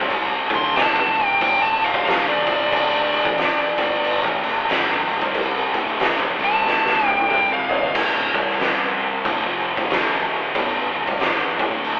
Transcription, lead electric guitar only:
0.55 0.76 C6 loud
0.76 1.26 A5 loud
1.26 1.40 G5 loud
1.43 1.62 G5 medium
1.63 1.84 A5 loud
1.84 2.04 F5 medium
2.05 2.28 F5 medium
2.28 4.21 D5 loud
6.44 7.06 A5 loud
7.06 7.28 G5 loud
7.30 7.51 G5 medium
7.53 7.94 F5 loud

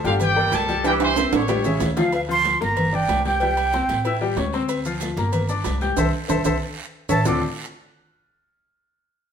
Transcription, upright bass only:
0.04 0.49 G1 loud
0.52 1.26 C2 loud
1.32 1.77 A1 medium
1.81 2.55 D2 medium
2.61 3.05 G1 medium
3.08 3.83 C2 loud
3.89 4.33 A1 medium
4.36 5.11 D2 loud
5.17 5.62 G1 loud
5.66 5.95 C2 loud
5.97 6.09 C2 loud
6.29 6.41 C2 loud
6.45 6.57 C2 medium
7.09 7.21 A1 loud
7.25 7.41 D2 loud

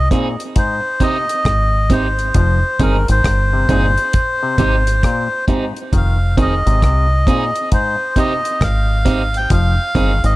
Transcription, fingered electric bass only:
1.46 2.31 G#1 medium
2.35 2.62 F1 loud
2.80 3.06 G1 medium
3.09 3.24 G#1 medium
3.25 3.66 G1 medium
3.69 3.96 G1 medium
4.59 5.00 G#1 medium
5.93 6.62 F1 loud
6.67 6.81 G#1 medium
6.83 7.24 C2 loud
8.61 9.46 G#1 loud
9.51 9.77 F1 loud
9.95 10.22 G1 medium
10.24 10.36 G#1 medium

